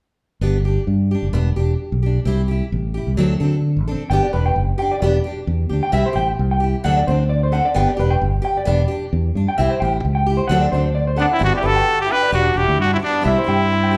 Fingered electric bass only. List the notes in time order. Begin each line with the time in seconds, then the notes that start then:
0.41 G1
0.87 G2
1.23 F#1
1.33 E1
1.57 E1
1.92 B1
2.25 C2
2.72 A1
3.07 C2
3.17 D2
3.41 D3
3.77 A1
4.10 G1
4.34 E1
4.56 F#1
5.02 E1
5.47 E2
5.71 D2
5.93 C2
6.15 A1
6.39 C2
6.85 D2
7.08 D2
7.76 G1
7.99 E1
8.21 G1
8.67 E1
9.13 E2
9.35 G2
9.59 C2
9.82 A1
10.05 C#2
10.50 D2
10.72 D2
11.41 G1
11.64 G1
12.32 E1
12.56 E1
12.68 D2
12.79 G2
13.26 C2
13.48 G2